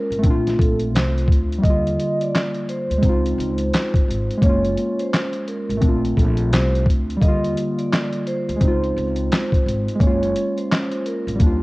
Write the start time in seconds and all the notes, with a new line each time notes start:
Already playing: G#3 A#3 C#4 F4 A#4
0.10 G#1, closed hi-hat
0.19 A3 C4
0.23 A#1 D4, kick, closed hi-hat
0.30 F4
0.47 snare, closed hi-hat
0.59 A#1 A4, kick, closed hi-hat
0.79 closed hi-hat
0.94 C2 C5, snare, clap, closed hi-hat
1.18 closed hi-hat
1.28 D2, kick
1.32 closed hi-hat
1.52 closed hi-hat
1.58 G3 A#3
1.63 D#2 D3 D#5, kick, closed hi-hat
1.69 F4
1.87 closed hi-hat
1.99 closed hi-hat
2.21 D5, closed hi-hat
2.35 snare, clap, closed hi-hat
2.54 closed hi-hat
2.69 C5, closed hi-hat
2.90 D2, closed hi-hat
2.98 G#3 C4
3.03 C#2 D#4, kick, closed hi-hat
3.09 F4
3.26 closed hi-hat
3.38 C#2, closed hi-hat
3.58 closed hi-hat
3.74 snare, clap, closed hi-hat
3.94 kick, closed hi-hat
4.08 G#1, closed hi-hat
4.31 closed hi-hat
4.38 G#3 A#3
4.42 F#1 C#4 C#5, kick, closed hi-hat
4.49 F4
4.65 closed hi-hat
4.77 closed hi-hat
4.99 C5, closed hi-hat
5.14 snare, clap, closed hi-hat
5.33 closed hi-hat
5.48 A#4, closed hi-hat
5.69 G#1, closed hi-hat
5.77 A3 C4
5.82 A#1 D4, kick, closed hi-hat
5.88 F4
6.05 closed hi-hat
6.17 A#1 A4, kick, closed hi-hat
6.37 closed hi-hat
6.53 C2 C5, snare, clap, closed hi-hat
6.75 closed hi-hat
6.86 D2, kick
6.90 closed hi-hat
7.10 closed hi-hat
7.17 G3 A#3
7.21 D#2 D3 D#5, kick, closed hi-hat
7.28 F4
7.44 closed hi-hat
7.57 closed hi-hat
7.79 D5, closed hi-hat
7.93 snare, clap, closed hi-hat
8.12 closed hi-hat
8.27 C5, closed hi-hat
8.48 D2, closed hi-hat
8.56 G#3 C4
8.61 C#2 D#4, kick, closed hi-hat
8.68 F4
8.84 closed hi-hat
8.96 C#2, closed hi-hat
9.16 closed hi-hat
9.32 snare, clap, closed hi-hat
9.52 kick, closed hi-hat
9.66 G#1, closed hi-hat
9.89 closed hi-hat
9.96 G#3 A#3
10.00 F#1 C#4 C#5, kick, closed hi-hat
10.07 F4
10.23 closed hi-hat
10.36 closed hi-hat
10.57 C5, closed hi-hat
10.72 snare, clap, closed hi-hat
10.92 closed hi-hat
11.06 A#4, closed hi-hat
11.27 G#1, closed hi-hat
11.35 G3 A#3
11.40 D#2 D4, kick, closed hi-hat
11.46 F4